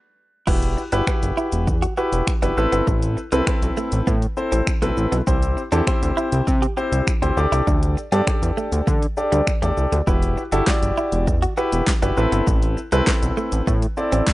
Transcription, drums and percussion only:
0.47 kick, crash, shaker
0.62 closed hi-hat, shaker
0.78 shaker
0.92 closed hi-hat, shaker
1.07 finger snap, kick, shaker
1.23 closed hi-hat, shaker
1.37 shaker
1.52 closed hi-hat, shaker
1.67 kick, shaker
1.82 closed hi-hat, shaker
1.97 shaker
2.13 closed hi-hat, shaker
2.27 finger snap, kick, shaker
2.43 closed hi-hat, shaker
2.57 shaker
2.73 closed hi-hat, shaker
2.87 kick, shaker
3.02 closed hi-hat, shaker
3.17 shaker
3.32 closed hi-hat, shaker
3.47 finger snap, kick, shaker
3.62 closed hi-hat, shaker
3.77 shaker
3.92 closed hi-hat, shaker
4.07 kick, shaker
4.22 closed hi-hat, shaker
4.37 shaker
4.52 closed hi-hat, shaker
4.67 finger snap, kick, shaker
4.82 closed hi-hat, shaker
4.97 shaker
5.12 closed hi-hat, shaker
5.27 kick, shaker
5.42 closed hi-hat, shaker
5.57 shaker
5.72 closed hi-hat, shaker
5.87 finger snap, kick, shaker
6.03 closed hi-hat, shaker
6.17 shaker
6.32 closed hi-hat, shaker
6.47 kick, shaker
6.63 closed hi-hat, shaker
6.77 shaker
6.93 closed hi-hat, shaker
7.07 finger snap, kick, shaker
7.23 closed hi-hat, shaker
7.37 shaker
7.53 closed hi-hat, shaker
7.67 kick, shaker
7.83 closed hi-hat, shaker
7.98 shaker
8.12 closed hi-hat, shaker
8.27 finger snap, kick, shaker
8.43 closed hi-hat, shaker
8.58 shaker
8.72 closed hi-hat, shaker
8.87 kick, shaker
9.02 closed hi-hat, shaker
9.17 shaker
9.32 closed hi-hat, shaker
9.47 finger snap, kick, shaker
9.63 closed hi-hat, shaker
9.77 shaker
9.92 closed hi-hat, shaker
10.07 kick, shaker
10.22 closed hi-hat, shaker
10.38 shaker
10.52 closed hi-hat, shaker
10.67 kick, snare, clap, shaker
10.83 closed hi-hat, shaker
10.97 shaker
11.12 closed hi-hat, shaker
11.27 kick, shaker
11.42 closed hi-hat, shaker
11.57 shaker
11.72 closed hi-hat, shaker
11.87 kick, snare, clap, shaker
12.03 closed hi-hat, shaker
12.17 shaker
12.32 closed hi-hat, shaker
12.47 kick, shaker
12.62 closed hi-hat, shaker
12.77 shaker
12.92 closed hi-hat, shaker
13.07 kick, snare, clap, shaker
13.23 closed hi-hat, shaker
13.37 shaker
13.52 closed hi-hat, shaker
13.67 kick, shaker
13.82 closed hi-hat, shaker
13.97 shaker
14.12 closed hi-hat, shaker
14.27 kick, snare, clap, shaker

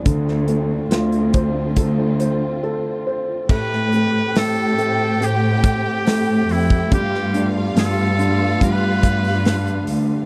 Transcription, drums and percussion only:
0.05 kick, closed hi-hat
0.28 snare
0.48 closed hi-hat
0.91 snare, closed hi-hat
1.12 closed hi-hat
1.33 kick, closed hi-hat
1.76 kick, closed hi-hat
2.20 closed hi-hat
3.49 kick, crash
3.73 snare
3.92 hi-hat pedal, open hi-hat
4.35 snare, hi-hat pedal, open hi-hat
4.79 hi-hat pedal, open hi-hat
5.22 hi-hat pedal, open hi-hat
5.64 kick, hi-hat pedal, open hi-hat
6.06 snare, hi-hat pedal, open hi-hat
6.49 hi-hat pedal, open hi-hat
6.70 kick
6.92 kick, hi-hat pedal, open hi-hat
7.14 snare
7.34 hi-hat pedal, open hi-hat
7.76 snare, hi-hat pedal, open hi-hat
8.19 hi-hat pedal, open hi-hat
8.61 kick, hi-hat pedal, open hi-hat
9.03 kick, hi-hat pedal, open hi-hat
9.24 open hi-hat
9.45 snare, hi-hat pedal, open hi-hat
9.67 hi-hat pedal
9.87 hi-hat pedal, open hi-hat

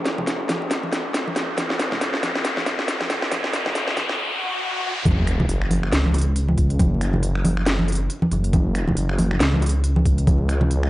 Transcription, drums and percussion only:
0.06 snare, closed hi-hat
0.18 high conga, low conga
0.27 kick, snare, closed hi-hat
0.49 snare, closed hi-hat, high conga
0.62 high bongo
0.71 kick, snare, closed hi-hat
0.83 high conga
0.93 snare, closed hi-hat
1.14 kick, snare, closed hi-hat
1.27 high conga
1.36 snare, closed hi-hat, high bongo
1.58 kick, snare, closed hi-hat, high conga
1.70 snare
1.79 snare, closed hi-hat
1.92 snare, high conga, low conga
2.01 kick, snare, closed hi-hat
2.14 snare
2.23 snare, closed hi-hat, high conga
2.35 snare, high bongo
2.45 kick, snare, closed hi-hat
2.57 snare, high conga
2.66 snare, closed hi-hat, high bongo
2.79 snare
2.88 kick, snare, closed hi-hat
3.01 snare, high conga
3.10 snare, closed hi-hat
3.22 snare
3.32 kick, snare, closed hi-hat, high conga
3.44 snare
3.53 snare, closed hi-hat
3.65 snare, high conga, low conga
3.75 kick, snare, closed hi-hat
3.88 snare
3.96 snare, closed hi-hat, high conga
4.09 snare, high bongo
5.05 kick, closed hi-hat, high conga
5.27 finger snap, closed hi-hat
5.40 high conga, low conga
5.49 closed hi-hat
5.62 finger snap
5.71 open hi-hat, high conga
5.83 finger snap, high bongo
5.92 snare, closed hi-hat
6.06 high conga
6.14 closed hi-hat, high bongo
6.18 closed hi-hat
6.21 closed hi-hat
6.36 closed hi-hat
6.49 high conga
6.58 kick, closed hi-hat
6.70 closed hi-hat
6.79 kick, closed hi-hat, high conga
7.01 finger snap, closed hi-hat
7.13 high conga, low conga
7.23 closed hi-hat
7.35 finger snap
7.45 open hi-hat, high conga
7.57 finger snap, high bongo
7.66 snare, closed hi-hat
7.79 high conga
7.88 closed hi-hat
7.92 closed hi-hat
7.95 closed hi-hat
8.10 closed hi-hat
8.22 high conga
8.32 closed hi-hat, high bongo
8.44 closed hi-hat
8.53 kick, closed hi-hat, high conga
8.75 finger snap, closed hi-hat
8.88 high conga, low conga
8.97 closed hi-hat
9.09 finger snap
9.18 open hi-hat, high conga
9.31 finger snap, high bongo
9.40 snare, closed hi-hat
9.54 high conga
9.62 closed hi-hat, high bongo
9.66 closed hi-hat
9.69 closed hi-hat
9.84 closed hi-hat
9.96 high conga
10.06 kick, closed hi-hat
10.18 closed hi-hat
10.27 kick, closed hi-hat, high conga
10.49 finger snap, closed hi-hat
10.61 high conga, low conga
10.71 closed hi-hat
10.83 finger snap

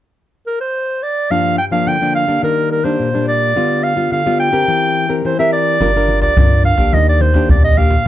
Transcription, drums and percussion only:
5.81 pandeiro, shaker, surdo
5.95 pandeiro, shaker
6.08 pandeiro
6.22 pandeiro, shaker, surdo
6.37 pandeiro, shaker, surdo
6.52 pandeiro, shaker
6.64 pandeiro
6.78 pandeiro, shaker, surdo
6.93 pandeiro, shaker, surdo
7.07 pandeiro, shaker
7.21 pandeiro, shaker
7.34 pandeiro, shaker, surdo
7.49 pandeiro, shaker, surdo
7.64 pandeiro, shaker
7.77 pandeiro
7.91 pandeiro, shaker, surdo

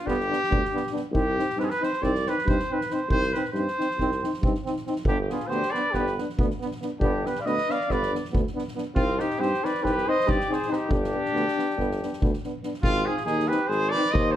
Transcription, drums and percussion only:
0.07 kick, snare
0.20 snare
0.33 snare
0.44 snare
0.52 kick
0.65 snare
0.76 snare
0.86 snare
0.96 snare
1.15 kick
1.39 snare
1.50 snare
1.60 snare
1.70 snare
1.83 snare
1.93 snare
2.03 kick, snare
2.15 snare
2.26 snare
2.38 snare
2.48 kick
2.59 snare
2.81 snare
2.90 snare
3.10 kick
3.22 snare
3.34 snare
3.45 snare
3.54 snare
3.67 snare
3.80 snare
3.90 snare
3.99 kick, snare
4.11 snare
4.23 snare
4.33 snare
4.43 kick
4.54 snare
4.66 snare
4.76 snare
4.86 snare
4.96 snare
5.05 kick
5.29 snare
5.40 snare
5.51 snare
5.62 snare
5.74 snare
5.94 kick, snare
6.06 snare
6.18 snare
6.29 snare
6.39 kick
6.50 snare
6.61 snare
6.71 snare
6.82 snare
7.01 kick
7.25 snare
7.35 snare
7.46 snare
7.58 snare
7.70 snare
7.80 snare
7.90 kick, snare
8.02 snare
8.15 snare
8.25 snare
8.35 kick
8.47 snare
8.58 snare
8.68 snare
8.78 snare
8.96 kick
9.19 snare
9.30 snare
9.42 snare
9.54 snare
9.65 snare
9.74 snare
9.85 kick, snare
9.98 snare
10.20 snare
10.29 kick
10.40 snare
10.52 snare
10.62 snare
10.72 snare
10.91 kick
11.04 snare
11.25 snare
11.36 snare
11.48 snare
11.59 snare
11.70 snare
11.79 kick, snare
11.91 snare
12.02 snare
12.13 snare
12.22 kick
12.33 snare
12.43 snare
12.63 snare
12.74 snare
12.83 kick
13.17 snare
13.27 snare
13.40 snare
13.51 snare
13.71 snare
13.95 snare
14.05 snare
14.15 kick

